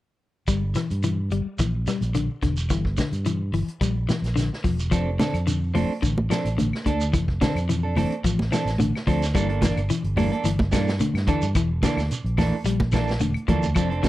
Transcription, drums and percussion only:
0.48 kick, closed hi-hat, shekere
0.75 cross-stick, closed hi-hat, shekere
0.90 closed hi-hat, shekere
1.03 closed hi-hat, shekere
1.31 closed hi-hat, shekere
1.59 kick, closed hi-hat, shekere
1.87 cross-stick, closed hi-hat, shekere
2.02 closed hi-hat, shekere
2.15 closed hi-hat, shekere
2.42 kick, closed hi-hat, shekere
2.57 shekere
2.70 kick, closed hi-hat, shekere
2.85 kick
2.97 kick, snare, closed hi-hat, shekere
3.12 closed hi-hat, shekere
3.25 closed hi-hat, shekere
3.53 open hi-hat, shekere
3.68 closed hi-hat
3.81 kick, closed hi-hat, shekere
4.09 snare, closed hi-hat, shekere
4.24 snare, closed hi-hat, shekere
4.37 snare, closed hi-hat, shekere
4.53 snare
4.64 kick, open hi-hat, shekere
4.79 closed hi-hat, shekere
4.92 kick, closed hi-hat, claves, shekere
5.19 snare, closed hi-hat, high conga, shekere
5.34 closed hi-hat, claves, shekere
5.47 closed hi-hat, shekere
5.75 open hi-hat, high conga, claves, shekere
6.03 kick, closed hi-hat, shekere
6.18 high conga
6.31 snare, closed hi-hat, claves, shekere
6.45 closed hi-hat, shekere
6.58 closed hi-hat, high conga, shekere
6.73 snare, claves
6.86 kick, closed hi-hat, high conga, shekere
7.01 shekere
7.14 kick, closed hi-hat, claves, shekere
7.28 kick
7.41 kick, snare, closed hi-hat, high conga, shekere
7.56 closed hi-hat, claves, shekere
7.69 closed hi-hat, shekere
7.96 open hi-hat, high conga, claves, shekere
8.12 closed hi-hat
8.24 kick, closed hi-hat, shekere
8.39 snare, high conga
8.52 snare, closed hi-hat, claves, shekere
8.67 snare, closed hi-hat, shekere
8.79 closed hi-hat, high conga, shekere
8.95 snare, claves
9.07 kick, open hi-hat, shekere
9.22 snare, closed hi-hat, shekere
9.35 kick, closed hi-hat, claves, shekere
9.49 closed hi-hat
9.62 kick, snare, closed hi-hat, high conga, shekere
9.77 closed hi-hat, claves, shekere
9.90 closed hi-hat, shekere
10.04 closed hi-hat
10.17 open hi-hat, high conga, low conga, claves, shekere
10.33 closed hi-hat
10.45 closed hi-hat, shekere
10.59 kick, high conga
10.72 kick, snare, closed hi-hat, claves, shekere
10.88 snare, shekere
11.00 closed hi-hat, high conga, shekere
11.15 snare, closed hi-hat, claves
11.27 kick, closed hi-hat, low conga, shekere
11.42 shekere
11.55 kick, closed hi-hat, claves, shekere
11.83 kick, snare, closed hi-hat, high conga, shekere
11.97 snare, closed hi-hat, claves, shekere
12.11 closed hi-hat, shekere
12.26 closed hi-hat
12.38 snare, open hi-hat, high conga, low conga, claves, shekere
12.65 closed hi-hat, shekere
12.80 kick, high conga
12.92 kick, snare, closed hi-hat, claves, shekere
13.07 snare, closed hi-hat, shekere
13.20 closed hi-hat, high conga, shekere
13.34 closed hi-hat, claves
13.48 kick, closed hi-hat, high conga, low conga, shekere
13.63 low conga, shekere
13.75 kick, closed hi-hat, claves, shekere
13.91 closed hi-hat
14.03 kick, snare, closed hi-hat, high conga, shekere

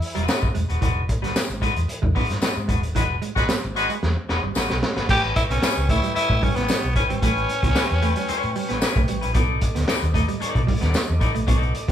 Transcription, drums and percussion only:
0.02 open hi-hat
0.16 closed hi-hat
0.28 snare, tambourine
0.43 kick
0.55 closed hi-hat
0.70 closed hi-hat
0.82 kick, closed hi-hat
1.09 kick, closed hi-hat
1.24 snare, closed hi-hat
1.36 snare, tambourine
1.50 closed hi-hat
1.62 kick, closed hi-hat
1.76 closed hi-hat
1.89 closed hi-hat
2.03 kick
2.16 kick, open hi-hat
2.30 snare, closed hi-hat
2.42 snare, tambourine
2.69 kick, closed hi-hat
2.83 closed hi-hat
2.96 kick, closed hi-hat
3.22 closed hi-hat
3.36 kick, snare, closed hi-hat
3.49 snare, tambourine
3.63 closed hi-hat
3.76 closed hi-hat
3.90 closed hi-hat
4.03 snare
4.29 snare
4.55 snare, tambourine
4.70 snare
4.83 snare
4.97 snare
5.09 kick, crash
5.24 closed hi-hat
5.36 kick, closed hi-hat
5.50 snare, closed hi-hat
5.63 snare, tambourine
5.89 kick, closed hi-hat
6.03 closed hi-hat
6.16 closed hi-hat
6.30 kick
6.42 kick, open hi-hat
6.56 snare, closed hi-hat
6.68 snare, tambourine
6.96 kick, closed hi-hat
7.10 closed hi-hat
7.22 kick, closed hi-hat
7.37 closed hi-hat
7.49 closed hi-hat
7.63 kick, snare, closed hi-hat
7.76 snare, tambourine
7.90 closed hi-hat
8.02 closed hi-hat
8.16 closed hi-hat
8.29 closed hi-hat
8.43 closed hi-hat
8.56 open hi-hat
8.70 snare, closed hi-hat
8.82 snare, tambourine
8.96 kick, closed hi-hat
9.08 closed hi-hat
9.23 closed hi-hat
9.34 kick, closed hi-hat
9.61 kick, closed hi-hat
9.76 snare, closed hi-hat
9.88 snare, tambourine
10.02 closed hi-hat
10.14 kick, closed hi-hat
10.29 closed hi-hat
10.42 closed hi-hat
10.55 kick, closed hi-hat
10.68 kick, open hi-hat
10.82 snare, closed hi-hat
10.94 snare, tambourine
11.21 kick, closed hi-hat
11.35 closed hi-hat
11.48 kick, closed hi-hat
11.62 closed hi-hat
11.75 closed hi-hat
11.89 kick, snare

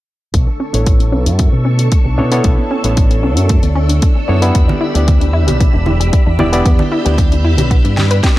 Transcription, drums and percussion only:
0.34 kick, closed hi-hat
0.74 closed hi-hat
0.86 kick, closed hi-hat
1.00 closed hi-hat
1.26 closed hi-hat
1.39 kick, closed hi-hat
1.79 closed hi-hat
1.92 kick, closed hi-hat
2.32 closed hi-hat
2.44 kick, closed hi-hat
2.84 closed hi-hat
2.97 kick, closed hi-hat
3.11 closed hi-hat
3.37 closed hi-hat
3.49 kick, closed hi-hat
3.63 closed hi-hat
3.89 closed hi-hat
4.02 kick, closed hi-hat
4.42 closed hi-hat
4.55 kick, closed hi-hat
4.69 high conga
4.95 closed hi-hat
5.08 kick, closed hi-hat, high conga
5.21 closed hi-hat
5.48 closed hi-hat, high conga
5.61 kick, closed hi-hat
5.86 high conga
6.01 closed hi-hat
6.13 kick, closed hi-hat
6.39 high conga
6.53 closed hi-hat
6.66 kick, closed hi-hat
6.79 high conga
7.06 closed hi-hat
7.18 kick, closed hi-hat, high conga
7.32 closed hi-hat
7.58 closed hi-hat, high conga
7.71 kick, closed hi-hat
7.85 closed hi-hat
7.97 snare, high conga
8.11 closed hi-hat
8.23 kick, snare, closed hi-hat

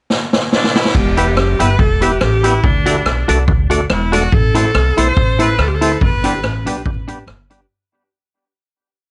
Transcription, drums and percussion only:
0.10 snare
0.33 snare
0.52 snare
0.64 snare
0.75 snare
0.85 snare
0.95 kick, crash
1.17 closed hi-hat
1.37 cross-stick
1.60 closed hi-hat
1.79 kick
2.02 closed hi-hat
2.21 cross-stick
2.44 closed hi-hat
2.64 kick
2.86 closed hi-hat
3.06 cross-stick
3.29 closed hi-hat
3.48 kick
3.71 closed hi-hat
3.90 cross-stick
4.13 closed hi-hat
4.32 kick
4.55 closed hi-hat
4.75 cross-stick
4.98 closed hi-hat
5.17 kick
5.40 closed hi-hat
5.59 cross-stick
5.82 closed hi-hat
6.01 kick
6.24 closed hi-hat
6.44 cross-stick
6.67 closed hi-hat
6.86 kick
7.08 closed hi-hat
7.28 cross-stick
7.50 closed hi-hat

